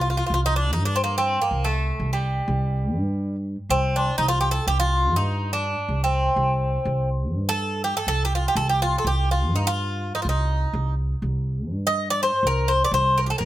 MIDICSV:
0, 0, Header, 1, 3, 480
1, 0, Start_track
1, 0, Tempo, 485437
1, 1507, Time_signature, 9, 3, 24, 8
1, 13300, End_track
2, 0, Start_track
2, 0, Title_t, "Bouzouki"
2, 0, Program_c, 0, 25
2, 13, Note_on_c, 0, 65, 52
2, 83, Note_off_c, 0, 65, 0
2, 98, Note_on_c, 0, 65, 55
2, 160, Note_off_c, 0, 65, 0
2, 172, Note_on_c, 0, 65, 62
2, 237, Note_off_c, 0, 65, 0
2, 261, Note_on_c, 0, 65, 50
2, 318, Note_off_c, 0, 65, 0
2, 334, Note_on_c, 0, 65, 65
2, 391, Note_off_c, 0, 65, 0
2, 452, Note_on_c, 0, 63, 85
2, 551, Note_off_c, 0, 63, 0
2, 555, Note_on_c, 0, 62, 75
2, 716, Note_off_c, 0, 62, 0
2, 720, Note_on_c, 0, 63, 81
2, 837, Note_off_c, 0, 63, 0
2, 844, Note_on_c, 0, 62, 74
2, 945, Note_on_c, 0, 60, 82
2, 949, Note_off_c, 0, 62, 0
2, 1021, Note_off_c, 0, 60, 0
2, 1025, Note_on_c, 0, 58, 79
2, 1150, Note_off_c, 0, 58, 0
2, 1164, Note_on_c, 0, 60, 83
2, 1396, Note_off_c, 0, 60, 0
2, 1400, Note_on_c, 0, 58, 65
2, 1626, Note_on_c, 0, 57, 78
2, 1641, Note_off_c, 0, 58, 0
2, 2101, Note_off_c, 0, 57, 0
2, 2105, Note_on_c, 0, 55, 65
2, 3315, Note_off_c, 0, 55, 0
2, 3663, Note_on_c, 0, 60, 89
2, 3912, Note_off_c, 0, 60, 0
2, 3916, Note_on_c, 0, 62, 77
2, 4128, Note_off_c, 0, 62, 0
2, 4132, Note_on_c, 0, 63, 85
2, 4232, Note_off_c, 0, 63, 0
2, 4236, Note_on_c, 0, 65, 97
2, 4353, Note_off_c, 0, 65, 0
2, 4357, Note_on_c, 0, 67, 79
2, 4458, Note_off_c, 0, 67, 0
2, 4462, Note_on_c, 0, 69, 89
2, 4620, Note_off_c, 0, 69, 0
2, 4624, Note_on_c, 0, 67, 91
2, 4738, Note_off_c, 0, 67, 0
2, 4742, Note_on_c, 0, 65, 92
2, 5079, Note_off_c, 0, 65, 0
2, 5105, Note_on_c, 0, 63, 82
2, 5463, Note_off_c, 0, 63, 0
2, 5467, Note_on_c, 0, 62, 85
2, 5962, Note_off_c, 0, 62, 0
2, 5970, Note_on_c, 0, 60, 71
2, 7005, Note_off_c, 0, 60, 0
2, 7404, Note_on_c, 0, 69, 90
2, 7749, Note_off_c, 0, 69, 0
2, 7753, Note_on_c, 0, 67, 78
2, 7874, Note_off_c, 0, 67, 0
2, 7878, Note_on_c, 0, 69, 84
2, 7977, Note_off_c, 0, 69, 0
2, 7989, Note_on_c, 0, 69, 100
2, 8146, Note_off_c, 0, 69, 0
2, 8156, Note_on_c, 0, 67, 80
2, 8253, Note_off_c, 0, 67, 0
2, 8257, Note_on_c, 0, 65, 73
2, 8367, Note_off_c, 0, 65, 0
2, 8386, Note_on_c, 0, 67, 79
2, 8465, Note_off_c, 0, 67, 0
2, 8469, Note_on_c, 0, 69, 93
2, 8592, Note_off_c, 0, 69, 0
2, 8597, Note_on_c, 0, 67, 75
2, 8716, Note_off_c, 0, 67, 0
2, 8722, Note_on_c, 0, 65, 87
2, 8879, Note_off_c, 0, 65, 0
2, 8883, Note_on_c, 0, 69, 65
2, 8946, Note_off_c, 0, 69, 0
2, 8967, Note_on_c, 0, 67, 81
2, 9204, Note_off_c, 0, 67, 0
2, 9208, Note_on_c, 0, 65, 69
2, 9445, Note_off_c, 0, 65, 0
2, 9448, Note_on_c, 0, 63, 71
2, 9561, Note_on_c, 0, 65, 92
2, 9562, Note_off_c, 0, 63, 0
2, 10031, Note_off_c, 0, 65, 0
2, 10035, Note_on_c, 0, 63, 63
2, 10096, Note_off_c, 0, 63, 0
2, 10106, Note_on_c, 0, 65, 54
2, 10171, Note_off_c, 0, 65, 0
2, 10175, Note_on_c, 0, 63, 74
2, 10810, Note_off_c, 0, 63, 0
2, 11734, Note_on_c, 0, 75, 96
2, 11964, Note_off_c, 0, 75, 0
2, 11968, Note_on_c, 0, 74, 101
2, 12083, Note_off_c, 0, 74, 0
2, 12090, Note_on_c, 0, 72, 85
2, 12304, Note_off_c, 0, 72, 0
2, 12327, Note_on_c, 0, 70, 91
2, 12539, Note_on_c, 0, 72, 86
2, 12566, Note_off_c, 0, 70, 0
2, 12696, Note_off_c, 0, 72, 0
2, 12700, Note_on_c, 0, 74, 87
2, 12785, Note_off_c, 0, 74, 0
2, 12793, Note_on_c, 0, 72, 101
2, 13028, Note_on_c, 0, 70, 80
2, 13040, Note_off_c, 0, 72, 0
2, 13111, Note_off_c, 0, 70, 0
2, 13115, Note_on_c, 0, 67, 61
2, 13144, Note_off_c, 0, 67, 0
2, 13152, Note_on_c, 0, 69, 79
2, 13228, Note_off_c, 0, 69, 0
2, 13232, Note_on_c, 0, 70, 84
2, 13300, Note_off_c, 0, 70, 0
2, 13300, End_track
3, 0, Start_track
3, 0, Title_t, "Upright bass"
3, 0, Program_c, 1, 32
3, 0, Note_on_c, 1, 36, 85
3, 201, Note_off_c, 1, 36, 0
3, 296, Note_on_c, 1, 36, 84
3, 771, Note_off_c, 1, 36, 0
3, 771, Note_on_c, 1, 43, 80
3, 1347, Note_off_c, 1, 43, 0
3, 1492, Note_on_c, 1, 36, 78
3, 1878, Note_off_c, 1, 36, 0
3, 1973, Note_on_c, 1, 36, 81
3, 2358, Note_off_c, 1, 36, 0
3, 2449, Note_on_c, 1, 36, 89
3, 2930, Note_off_c, 1, 36, 0
3, 2930, Note_on_c, 1, 43, 84
3, 3507, Note_off_c, 1, 43, 0
3, 3653, Note_on_c, 1, 36, 86
3, 4038, Note_off_c, 1, 36, 0
3, 4137, Note_on_c, 1, 36, 87
3, 4521, Note_off_c, 1, 36, 0
3, 4616, Note_on_c, 1, 36, 89
3, 5093, Note_off_c, 1, 36, 0
3, 5093, Note_on_c, 1, 43, 85
3, 5668, Note_off_c, 1, 43, 0
3, 5819, Note_on_c, 1, 36, 82
3, 6202, Note_off_c, 1, 36, 0
3, 6290, Note_on_c, 1, 36, 89
3, 6677, Note_off_c, 1, 36, 0
3, 6777, Note_on_c, 1, 36, 88
3, 7253, Note_off_c, 1, 36, 0
3, 7253, Note_on_c, 1, 43, 82
3, 7829, Note_off_c, 1, 43, 0
3, 7976, Note_on_c, 1, 36, 71
3, 8361, Note_off_c, 1, 36, 0
3, 8458, Note_on_c, 1, 36, 92
3, 8842, Note_off_c, 1, 36, 0
3, 8944, Note_on_c, 1, 36, 96
3, 9411, Note_off_c, 1, 36, 0
3, 9411, Note_on_c, 1, 43, 90
3, 9988, Note_off_c, 1, 43, 0
3, 10133, Note_on_c, 1, 36, 87
3, 10519, Note_off_c, 1, 36, 0
3, 10614, Note_on_c, 1, 36, 93
3, 11000, Note_off_c, 1, 36, 0
3, 11095, Note_on_c, 1, 36, 82
3, 11570, Note_off_c, 1, 36, 0
3, 11570, Note_on_c, 1, 43, 94
3, 12148, Note_off_c, 1, 43, 0
3, 12289, Note_on_c, 1, 36, 78
3, 12678, Note_off_c, 1, 36, 0
3, 12770, Note_on_c, 1, 36, 91
3, 13158, Note_off_c, 1, 36, 0
3, 13255, Note_on_c, 1, 36, 99
3, 13300, Note_off_c, 1, 36, 0
3, 13300, End_track
0, 0, End_of_file